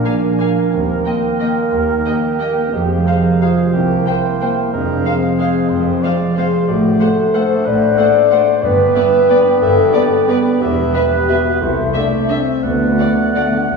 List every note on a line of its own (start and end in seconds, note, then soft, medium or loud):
0.00 0.74 A#2 medium
0.00 0.74 F3 soft
0.00 0.69 A#3 medium
0.00 0.71 D4 medium
0.00 0.39 A#4 soft
0.00 0.69 A#4 medium
0.00 0.75 G#5 medium
0.05 0.74 G#3 soft
0.05 0.13 A#3 soft
0.05 0.41 D5 medium
0.05 0.13 F5 medium
0.05 0.13 G#5 soft
0.23 0.56 F4 soft
0.40 0.48 A#3 soft
0.40 1.05 A#4 medium
0.40 1.39 A#4 soft
0.40 0.48 F5 soft
0.40 0.48 G#5 soft
0.57 0.74 F4 soft
0.72 1.00 D#2 medium
0.72 1.71 D#3 medium
0.72 2.70 A#3 soft
0.72 1.05 C4 medium
0.72 2.76 A#4 medium
0.72 2.75 G5 medium
0.89 1.87 D#4 soft
1.05 2.04 G3 soft
1.05 1.14 A#3 soft
1.05 2.38 A#3 medium
1.05 1.74 C5 medium
1.05 1.14 D#5 soft
1.05 1.13 G5 soft
1.23 1.56 G4 soft
1.40 1.49 A#3 soft
1.40 2.38 A#4 soft
1.40 1.48 D#5 soft
1.40 1.49 G5 soft
1.57 2.21 G4 soft
1.73 1.99 D#2 medium
1.73 2.75 D#3 medium
1.73 2.04 A#4 medium
1.88 2.74 D#4 soft
2.04 2.75 G3 soft
2.04 2.13 A#3 soft
2.04 3.08 G4 medium
2.04 2.13 D#5 medium
2.04 2.14 G5 soft
2.22 2.55 G4 soft
2.39 2.72 A#3 medium
2.39 2.47 A#3 soft
2.39 2.74 A#4 soft
2.39 2.48 D#5 medium
2.39 2.48 G5 soft
2.57 2.74 G4 medium
2.73 3.01 F1 medium
2.73 3.01 F2 medium
2.73 3.74 F3 medium
2.73 3.75 G#3 medium
2.73 3.41 G4 medium
2.73 4.72 C5 medium
2.73 3.73 F5 medium
2.89 4.04 C4 soft
3.06 3.15 G#3 soft
3.06 3.74 F4 soft
3.06 3.44 A#4 medium
3.06 3.15 C5 medium
3.06 3.15 F5 soft
3.24 3.56 G#4 soft
3.41 3.49 G#3 soft
3.41 3.74 F4 medium
3.41 3.72 G#4 medium
3.41 6.70 C5 soft
3.41 3.51 C5 soft
3.41 3.49 F5 soft
3.57 3.74 G#4 soft
3.72 4.01 C2 medium
3.72 4.73 C3 medium
3.72 4.72 A#3 soft
3.72 4.73 E4 medium
3.72 4.08 G4 medium
3.72 4.75 G5 medium
3.88 4.73 G3 soft
4.06 4.14 A#3 soft
4.06 4.73 C5 medium
4.06 4.15 C5 medium
4.06 4.15 G5 medium
4.22 4.55 G4 soft
4.40 4.50 A#3 soft
4.40 4.74 A#4 soft
4.40 4.49 C5 medium
4.40 4.49 G5 soft
4.56 4.74 G4 medium
4.73 5.00 F1 medium
4.73 5.69 F2 medium
4.73 5.00 F2 medium
4.73 6.39 G#3 medium
4.73 5.06 D4 medium
4.73 5.15 A#4 medium
4.73 6.39 C5 medium
4.73 6.43 F5 medium
4.88 5.85 C3 soft
5.05 5.14 G#3 soft
5.05 6.02 C4 soft
5.05 6.19 C4 loud
5.05 5.14 C5 medium
5.05 5.14 F5 medium
5.22 5.54 F4 soft
5.38 5.47 G#3 medium
5.38 6.35 G#4 medium
5.38 5.71 G#4 medium
5.38 5.48 C5 medium
5.38 5.47 F5 medium
5.55 6.19 F4 medium
5.69 5.97 F1 medium
5.69 6.70 F2 medium
5.69 5.97 F2 medium
5.69 6.04 C5 medium
5.86 6.70 C3 soft
6.03 6.11 G#3 soft
6.03 6.99 C4 medium
6.03 6.12 C5 medium
6.03 6.37 D5 medium
6.03 6.12 F5 medium
6.20 6.51 F4 soft
6.36 6.45 G#3 medium
6.36 6.69 G#4 medium
6.36 6.67 G#4 medium
6.36 6.45 C5 medium
6.36 6.67 C5 medium
6.36 6.46 F5 medium
6.52 6.69 F4 medium
6.67 6.95 A1 medium
6.67 7.63 A2 medium
6.67 6.95 A2 medium
6.67 8.60 A3 medium
6.67 7.01 F#4 loud
6.67 8.60 C5 medium
6.67 6.99 D5 medium
6.67 8.60 F#5 medium
6.83 7.79 A3 soft
7.00 7.09 A3 medium
7.00 7.96 C4 medium
7.00 7.35 A4 medium
7.00 7.36 C5 medium
7.00 7.09 C5 medium
7.00 7.08 F#5 medium
7.17 7.49 D4 medium
7.34 7.42 A3 medium
7.34 8.30 F#4 medium
7.34 7.67 A4 medium
7.34 7.42 C5 medium
7.34 7.66 C5 loud
7.34 7.42 F#5 medium
7.50 8.13 D4 medium
7.65 7.92 A1 medium
7.65 8.64 A2 medium
7.65 7.93 A2 medium
7.65 7.99 B4 medium
7.65 8.62 D5 loud
7.81 8.64 A3 soft
7.97 8.05 A3 medium
7.97 8.64 C4 medium
7.97 8.30 A4 medium
7.97 8.06 C5 medium
7.97 8.06 F#5 medium
8.14 8.47 D4 medium
8.31 8.39 A3 medium
8.31 8.64 F#4 medium
8.31 8.64 C5 medium
8.31 8.40 C5 medium
8.31 8.39 F#5 medium
8.48 9.11 D4 medium
8.63 8.90 G1 medium
8.63 9.09 G2 medium
8.63 9.60 G2 medium
8.63 8.90 G2 medium
8.63 10.58 B3 medium
8.63 9.61 B4 loud
8.63 10.58 B4 medium
8.63 8.96 D5 medium
8.63 10.64 G5 medium
8.79 9.75 D3 soft
8.95 9.92 B3 medium
8.95 9.03 B3 medium
8.95 9.04 B4 medium
8.95 9.04 D5 medium
8.95 9.31 E5 medium
9.13 9.44 D4 medium
9.29 9.38 B3 medium
9.29 10.27 G4 medium
9.29 9.38 B4 medium
9.29 9.37 D5 medium
9.29 9.61 D5 medium
9.45 10.10 D4 medium
9.61 9.88 G1 medium
9.61 10.63 G2 medium
9.61 9.89 G2 medium
9.61 10.27 A4 loud
9.61 9.95 E5 medium
9.76 10.63 D3 medium
9.93 10.94 B3 medium
9.93 10.02 B3 medium
9.93 10.03 B4 medium
9.93 10.01 D5 medium
9.93 10.27 D5 medium
10.11 10.44 D4 medium
10.28 10.62 B3 loud
10.28 10.36 B3 medium
10.28 11.28 G4 medium
10.28 10.38 B4 medium
10.28 10.63 D5 medium
10.28 10.37 D5 medium
10.45 10.63 D4 medium
10.61 10.89 E1 medium
10.61 11.63 E2 medium
10.61 10.90 E2 medium
10.61 11.63 B3 medium
10.61 11.29 G4 loud
10.61 11.63 B4 medium
10.61 10.96 E5 medium
10.61 12.64 E5 medium
10.78 11.63 B2 soft
10.94 11.03 B3 medium
10.94 11.63 B3 medium
10.94 11.61 B4 medium
10.94 11.03 B4 medium
10.94 11.02 E5 medium
11.12 11.44 E4 medium
11.29 11.37 B3 medium
11.29 11.61 F#4 loud
11.29 11.63 G4 medium
11.29 11.37 B4 medium
11.29 11.37 E5 medium
11.45 12.11 E4 medium
11.61 11.89 C2 medium
11.61 12.65 C3 medium
11.61 12.64 A3 medium
11.61 11.94 E4 medium
11.61 11.95 C5 medium
11.61 12.63 C5 medium
11.77 12.65 C4 soft
11.93 12.97 A3 medium
11.93 12.03 A3 medium
11.93 12.30 D4 medium
11.93 12.32 D5 medium
11.93 12.02 E5 medium
11.93 12.03 E5 medium
12.12 12.45 E4 soft
12.29 12.38 A3 medium
12.29 12.64 C4 medium
12.29 13.34 A4 medium
12.29 12.38 E5 medium
12.29 12.65 E5 medium
12.29 12.38 E5 medium
12.46 12.65 E4 medium
12.63 12.93 D2 medium
12.63 13.68 D3 medium
12.63 12.70 D3 soft
12.63 13.77 A3 medium
12.63 13.36 B3 medium
12.63 13.77 D5 medium
12.63 13.77 F#5 medium
12.71 12.77 D3 soft
12.79 12.85 D3 soft
12.79 13.77 D4 soft
12.94 13.02 D3 soft
12.94 13.77 A3 medium
12.99 13.10 D3 soft
12.99 13.08 A3 medium
12.99 13.07 D5 medium
12.99 13.07 F#5 medium
13.11 13.18 D3 soft
13.17 13.26 D3 soft
13.17 13.52 F#4 soft
13.27 13.34 D3 soft
13.35 13.42 D3 soft
13.35 13.77 A3 medium
13.35 13.44 A3 medium
13.35 13.77 A4 medium
13.35 13.43 D5 medium
13.35 13.45 F#5 soft
13.43 13.50 D3 soft
13.51 13.57 D3 medium
13.51 13.77 F#4 medium
13.58 13.64 D3 medium
13.65 13.72 D3 medium
13.70 13.77 D2 medium
13.70 13.77 D3 medium